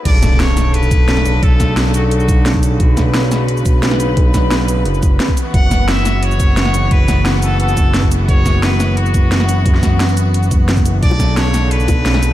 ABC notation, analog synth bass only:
X:1
M:4/4
L:1/8
Q:1/4=175
K:Bm
V:1 name="Analog synth bass" clef=bass
B,,,6- B,,, B,,, | B,,, B,,,6- B,,, | B,,, B,,,6- B,,, | B,,, B,,,3 F,,,2 z2 |
F,,,6- F,,, F,,, | F,,, F,,,6- F,,, | F,,, F,,,6- F,,, | F,,, F,,,6 F,,, |
B,,,6- B,,, B,,, |]